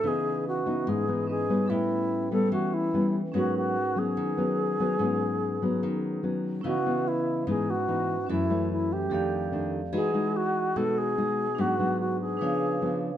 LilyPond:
<<
  \new Staff \with { instrumentName = "Vibraphone" } { \time 4/4 \key gis \minor \tempo 4 = 146 <cis' b' dis''>2. <cis' b' dis''>4 | <cis' a' b' g''>1 | <cis' gis' ais' b' fis''>1~ | <cis' gis' ais' b' fis''>1 |
\key cis \minor <cis' e' b' dis''>1 | <cis' fis' a' e''>2 <g' a' d'' f''>2 | <gis' dis'' fis''>1 | <d' gis' b' fis''>2 <d' b' cis'' eis''>2 | }
  \new Staff \with { instrumentName = "Alto flute" } { \time 4/4 \key gis \minor gis'4 fis'4 gis'4 gis'4 | e'4. a'8 fis'8 e'4 r8 | fis'8 fis'4 gis'2~ gis'8~ | gis'2. r4 |
\key cis \minor fis'4 e'4 gis'8 fis'4. | e'4 e'8 g'2 r8 | gis'4 fis'4 a'8 gis'4. | fis'4 fis'8 gis'2 r8 | }
  \new Staff \with { instrumentName = "Nylon-string guitar" } { \time 4/4 \key gis \minor << { <e b dis'>4. <e b dis'>4 <e b dis'>4 <g b cis'>8~ | <g b cis'>4. <g b cis'>4. <g b cis'>8 r8 | <fis b cis'>4 r8 <fis b cis'>4 <fis b cis'>4 <fis b cis'>8 | <fis b cis'>4. <fis b cis'>4. <fis b cis'>4 |
\key cis \minor <e b dis'>8 <e b>4. <e b dis'>8 r8 <e b dis'>8 r8 | <e a cis'>8 <e a cis'>4. <ees a d'>4 <ees a d'>8 r8 | <gis dis' fis'>8 <gis dis' fis'>4. <gis dis' fis'>4 <gis dis' fis'>8 r8 | <fis b d'>8 <fis b d'>4. <eis b d'>4 <eis b d'>8 r8 | } \\ { cis2 gis,2 | a,2 e2 | gis,2 dis2 | gis,2 dis2 |
cis2 gis,2 | fis,2 f,2 | e2 b,2 | gis,2 cis2 | } >> }
>>